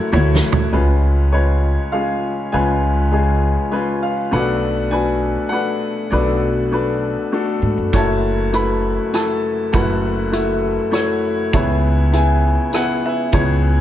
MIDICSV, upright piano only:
0, 0, Header, 1, 2, 480
1, 0, Start_track
1, 0, Tempo, 600000
1, 584, Time_signature, 3, 2, 24, 8
1, 11047, End_track
2, 0, Start_track
2, 0, Title_t, "Upright piano"
2, 0, Program_c, 0, 0
2, 0, Control_c, 0, 64, 127
2, 0, Note_on_c, 0, 30, 58
2, 0, Note_on_c, 0, 42, 60
2, 0, Note_on_c, 0, 57, 64
2, 0, Note_on_c, 0, 64, 57
2, 0, Note_on_c, 0, 66, 60
2, 0, Note_on_c, 0, 69, 58
2, 0, Note_on_c, 0, 73, 69
2, 0, Note_on_c, 0, 78, 81
2, 88, Note_off_c, 0, 69, 0
2, 96, Note_off_c, 0, 57, 0
2, 96, Note_on_c, 0, 57, 73
2, 99, Note_off_c, 0, 64, 0
2, 99, Note_on_c, 0, 64, 70
2, 101, Note_off_c, 0, 66, 0
2, 101, Note_on_c, 0, 66, 64
2, 108, Note_off_c, 0, 73, 0
2, 108, Note_on_c, 0, 73, 76
2, 395, Note_off_c, 0, 57, 0
2, 397, Note_off_c, 0, 64, 0
2, 398, Note_off_c, 0, 66, 0
2, 401, Note_off_c, 0, 73, 0
2, 553, Note_off_c, 0, 30, 0
2, 554, Note_off_c, 0, 42, 0
2, 578, Note_on_c, 0, 56, 61
2, 582, Note_on_c, 0, 61, 53
2, 583, Note_on_c, 0, 71, 65
2, 584, Note_on_c, 0, 37, 49
2, 584, Note_on_c, 0, 49, 46
2, 586, Note_on_c, 0, 65, 55
2, 596, Control_c, 0, 64, 0
2, 598, Note_off_c, 0, 78, 0
2, 735, Control_c, 0, 64, 127
2, 876, Note_off_c, 0, 56, 0
2, 879, Note_off_c, 0, 61, 0
2, 880, Note_off_c, 0, 65, 0
2, 1032, Note_off_c, 0, 71, 0
2, 1059, Note_on_c, 0, 56, 49
2, 1059, Note_on_c, 0, 73, 62
2, 1060, Note_on_c, 0, 61, 47
2, 1065, Note_on_c, 0, 65, 47
2, 1069, Note_on_c, 0, 71, 55
2, 1357, Note_off_c, 0, 56, 0
2, 1357, Note_off_c, 0, 61, 0
2, 1360, Note_off_c, 0, 65, 0
2, 1362, Note_off_c, 0, 71, 0
2, 1537, Note_on_c, 0, 77, 79
2, 1542, Note_on_c, 0, 56, 51
2, 1544, Note_on_c, 0, 61, 46
2, 1547, Note_on_c, 0, 65, 46
2, 1552, Note_on_c, 0, 68, 54
2, 1556, Note_off_c, 0, 73, 0
2, 1838, Note_off_c, 0, 56, 0
2, 1839, Note_off_c, 0, 61, 0
2, 1840, Note_off_c, 0, 65, 0
2, 1843, Note_off_c, 0, 68, 0
2, 1991, Note_off_c, 0, 37, 0
2, 1991, Note_off_c, 0, 49, 0
2, 2016, Note_off_c, 0, 77, 0
2, 2018, Note_on_c, 0, 80, 77
2, 2019, Note_on_c, 0, 56, 62
2, 2024, Note_on_c, 0, 61, 59
2, 2027, Note_on_c, 0, 37, 49
2, 2027, Note_on_c, 0, 49, 49
2, 2028, Note_on_c, 0, 77, 56
2, 2029, Note_on_c, 0, 65, 58
2, 2031, Note_on_c, 0, 71, 67
2, 2316, Note_off_c, 0, 56, 0
2, 2318, Note_off_c, 0, 61, 0
2, 2321, Note_off_c, 0, 65, 0
2, 2322, Note_off_c, 0, 71, 0
2, 2492, Note_on_c, 0, 56, 50
2, 2498, Note_on_c, 0, 61, 48
2, 2505, Note_on_c, 0, 65, 49
2, 2508, Note_on_c, 0, 68, 59
2, 2792, Note_off_c, 0, 56, 0
2, 2795, Note_off_c, 0, 61, 0
2, 2798, Note_off_c, 0, 65, 0
2, 2799, Note_off_c, 0, 68, 0
2, 2946, Note_off_c, 0, 80, 0
2, 2952, Note_off_c, 0, 77, 0
2, 2970, Note_on_c, 0, 56, 60
2, 2972, Note_on_c, 0, 61, 56
2, 2975, Note_on_c, 0, 80, 57
2, 2980, Note_on_c, 0, 65, 58
2, 2982, Note_on_c, 0, 71, 68
2, 3200, Note_off_c, 0, 80, 0
2, 3221, Note_on_c, 0, 77, 57
2, 3270, Note_off_c, 0, 56, 0
2, 3271, Note_off_c, 0, 61, 0
2, 3275, Note_off_c, 0, 65, 0
2, 3277, Note_off_c, 0, 71, 0
2, 3430, Note_off_c, 0, 37, 0
2, 3430, Note_off_c, 0, 49, 0
2, 3444, Note_off_c, 0, 77, 0
2, 3450, Note_on_c, 0, 57, 64
2, 3452, Note_on_c, 0, 62, 56
2, 3454, Note_on_c, 0, 35, 48
2, 3455, Note_on_c, 0, 47, 51
2, 3457, Note_on_c, 0, 66, 57
2, 3461, Note_on_c, 0, 71, 69
2, 3464, Note_on_c, 0, 78, 78
2, 3472, Control_c, 0, 64, 0
2, 3485, Note_on_c, 0, 74, 57
2, 3624, Control_c, 0, 64, 127
2, 3750, Note_off_c, 0, 57, 0
2, 3751, Note_off_c, 0, 62, 0
2, 3753, Note_off_c, 0, 66, 0
2, 3755, Note_off_c, 0, 71, 0
2, 3928, Note_on_c, 0, 80, 83
2, 3930, Note_on_c, 0, 57, 52
2, 3933, Note_on_c, 0, 62, 50
2, 3940, Note_on_c, 0, 66, 49
2, 3942, Note_on_c, 0, 71, 62
2, 3956, Note_off_c, 0, 78, 0
2, 4160, Note_off_c, 0, 74, 0
2, 4230, Note_off_c, 0, 57, 0
2, 4232, Note_off_c, 0, 62, 0
2, 4235, Note_off_c, 0, 66, 0
2, 4236, Note_off_c, 0, 71, 0
2, 4393, Note_on_c, 0, 78, 83
2, 4410, Note_on_c, 0, 57, 50
2, 4416, Note_on_c, 0, 62, 49
2, 4420, Note_on_c, 0, 66, 45
2, 4424, Note_on_c, 0, 71, 56
2, 4428, Note_off_c, 0, 80, 0
2, 4710, Note_off_c, 0, 57, 0
2, 4713, Note_off_c, 0, 62, 0
2, 4715, Note_off_c, 0, 66, 0
2, 4717, Note_off_c, 0, 71, 0
2, 4865, Note_off_c, 0, 35, 0
2, 4865, Note_off_c, 0, 47, 0
2, 4884, Note_on_c, 0, 74, 64
2, 4890, Note_on_c, 0, 57, 60
2, 4893, Note_on_c, 0, 62, 58
2, 4899, Note_on_c, 0, 35, 50
2, 4900, Note_on_c, 0, 66, 60
2, 4901, Note_off_c, 0, 78, 0
2, 4901, Note_on_c, 0, 47, 52
2, 4903, Note_on_c, 0, 71, 70
2, 4922, Note_on_c, 0, 69, 44
2, 5190, Note_off_c, 0, 57, 0
2, 5191, Note_off_c, 0, 62, 0
2, 5195, Note_off_c, 0, 66, 0
2, 5197, Note_off_c, 0, 71, 0
2, 5371, Note_on_c, 0, 57, 55
2, 5374, Note_on_c, 0, 62, 51
2, 5380, Note_on_c, 0, 66, 50
2, 5388, Note_on_c, 0, 71, 63
2, 5671, Note_off_c, 0, 57, 0
2, 5673, Note_off_c, 0, 62, 0
2, 5675, Note_off_c, 0, 66, 0
2, 5680, Note_off_c, 0, 71, 0
2, 5857, Note_off_c, 0, 69, 0
2, 5858, Note_on_c, 0, 57, 60
2, 5859, Note_on_c, 0, 62, 56
2, 5862, Note_on_c, 0, 66, 59
2, 5869, Note_on_c, 0, 69, 72
2, 6062, Note_off_c, 0, 74, 0
2, 6155, Note_off_c, 0, 57, 0
2, 6156, Note_off_c, 0, 62, 0
2, 6158, Note_off_c, 0, 66, 0
2, 6161, Note_off_c, 0, 69, 0
2, 6310, Note_off_c, 0, 35, 0
2, 6311, Note_off_c, 0, 47, 0
2, 6341, Note_on_c, 0, 57, 59
2, 6346, Note_on_c, 0, 30, 51
2, 6346, Note_on_c, 0, 64, 56
2, 6349, Note_on_c, 0, 42, 53
2, 6349, Note_on_c, 0, 66, 55
2, 6354, Control_c, 0, 64, 0
2, 6355, Note_on_c, 0, 73, 69
2, 6366, Note_on_c, 0, 76, 55
2, 6366, Note_on_c, 0, 81, 81
2, 6490, Control_c, 0, 64, 127
2, 6638, Note_off_c, 0, 57, 0
2, 6640, Note_off_c, 0, 64, 0
2, 6642, Note_off_c, 0, 66, 0
2, 6645, Note_off_c, 0, 73, 0
2, 6803, Note_off_c, 0, 81, 0
2, 6820, Note_on_c, 0, 57, 58
2, 6825, Note_on_c, 0, 64, 49
2, 6830, Note_on_c, 0, 66, 49
2, 6831, Note_on_c, 0, 71, 60
2, 6837, Note_on_c, 0, 83, 75
2, 7044, Note_off_c, 0, 76, 0
2, 7117, Note_off_c, 0, 57, 0
2, 7120, Note_off_c, 0, 64, 0
2, 7123, Note_off_c, 0, 66, 0
2, 7123, Note_off_c, 0, 71, 0
2, 7303, Note_on_c, 0, 57, 54
2, 7309, Note_on_c, 0, 64, 50
2, 7314, Note_on_c, 0, 66, 48
2, 7315, Note_on_c, 0, 69, 56
2, 7315, Note_on_c, 0, 81, 85
2, 7325, Note_off_c, 0, 83, 0
2, 7600, Note_off_c, 0, 57, 0
2, 7602, Note_off_c, 0, 64, 0
2, 7605, Note_off_c, 0, 66, 0
2, 7606, Note_off_c, 0, 69, 0
2, 7755, Note_off_c, 0, 30, 0
2, 7756, Note_off_c, 0, 42, 0
2, 7779, Note_on_c, 0, 57, 64
2, 7782, Note_on_c, 0, 78, 64
2, 7788, Note_on_c, 0, 64, 57
2, 7790, Note_on_c, 0, 30, 52
2, 7790, Note_on_c, 0, 42, 51
2, 7793, Note_on_c, 0, 66, 56
2, 7796, Note_on_c, 0, 69, 51
2, 7797, Note_on_c, 0, 71, 69
2, 7805, Note_off_c, 0, 81, 0
2, 8078, Note_off_c, 0, 57, 0
2, 8082, Note_off_c, 0, 64, 0
2, 8085, Note_off_c, 0, 66, 0
2, 8087, Note_off_c, 0, 71, 0
2, 8255, Note_on_c, 0, 57, 58
2, 8259, Note_on_c, 0, 64, 52
2, 8264, Note_on_c, 0, 66, 53
2, 8267, Note_on_c, 0, 76, 62
2, 8555, Note_off_c, 0, 57, 0
2, 8557, Note_off_c, 0, 64, 0
2, 8560, Note_off_c, 0, 66, 0
2, 8562, Note_off_c, 0, 76, 0
2, 8730, Note_on_c, 0, 57, 68
2, 8736, Note_on_c, 0, 64, 63
2, 8742, Note_on_c, 0, 66, 59
2, 8745, Note_on_c, 0, 73, 75
2, 8952, Note_off_c, 0, 78, 0
2, 8958, Note_off_c, 0, 69, 0
2, 9033, Note_off_c, 0, 57, 0
2, 9036, Note_off_c, 0, 64, 0
2, 9038, Note_off_c, 0, 66, 0
2, 9040, Note_off_c, 0, 73, 0
2, 9195, Note_off_c, 0, 30, 0
2, 9195, Note_off_c, 0, 42, 0
2, 9220, Note_on_c, 0, 59, 67
2, 9226, Note_on_c, 0, 37, 53
2, 9226, Note_on_c, 0, 64, 64
2, 9229, Note_on_c, 0, 68, 61
2, 9231, Note_on_c, 0, 49, 53
2, 9234, Note_on_c, 0, 76, 78
2, 9237, Control_c, 0, 64, 0
2, 9238, Note_on_c, 0, 73, 74
2, 9248, Note_on_c, 0, 71, 56
2, 9385, Control_c, 0, 64, 127
2, 9517, Note_off_c, 0, 59, 0
2, 9520, Note_off_c, 0, 64, 0
2, 9522, Note_off_c, 0, 68, 0
2, 9526, Note_off_c, 0, 73, 0
2, 9697, Note_on_c, 0, 59, 59
2, 9699, Note_off_c, 0, 76, 0
2, 9703, Note_on_c, 0, 64, 53
2, 9708, Note_on_c, 0, 68, 52
2, 9711, Note_on_c, 0, 76, 65
2, 9719, Note_on_c, 0, 80, 84
2, 9923, Note_off_c, 0, 71, 0
2, 9995, Note_off_c, 0, 59, 0
2, 9998, Note_off_c, 0, 64, 0
2, 10001, Note_off_c, 0, 68, 0
2, 10002, Note_off_c, 0, 76, 0
2, 10159, Note_off_c, 0, 80, 0
2, 10180, Note_on_c, 0, 59, 54
2, 10185, Note_on_c, 0, 64, 53
2, 10191, Note_on_c, 0, 68, 50
2, 10195, Note_on_c, 0, 76, 61
2, 10202, Note_on_c, 0, 78, 87
2, 10433, Note_off_c, 0, 76, 0
2, 10440, Note_off_c, 0, 78, 0
2, 10445, Note_on_c, 0, 76, 83
2, 10452, Note_on_c, 0, 71, 52
2, 10477, Note_off_c, 0, 59, 0
2, 10480, Note_off_c, 0, 64, 0
2, 10482, Note_off_c, 0, 68, 0
2, 10632, Note_off_c, 0, 37, 0
2, 10635, Note_off_c, 0, 49, 0
2, 10660, Note_on_c, 0, 59, 69
2, 10661, Note_on_c, 0, 64, 61
2, 10667, Note_on_c, 0, 49, 59
2, 10667, Note_on_c, 0, 68, 61
2, 10668, Note_on_c, 0, 37, 57
2, 10672, Note_on_c, 0, 73, 76
2, 10957, Note_off_c, 0, 59, 0
2, 10958, Note_off_c, 0, 64, 0
2, 10961, Note_off_c, 0, 68, 0
2, 10963, Note_off_c, 0, 73, 0
2, 11047, Note_off_c, 0, 37, 0
2, 11047, Note_off_c, 0, 49, 0
2, 11047, Note_off_c, 0, 71, 0
2, 11047, Note_off_c, 0, 76, 0
2, 11047, End_track
0, 0, End_of_file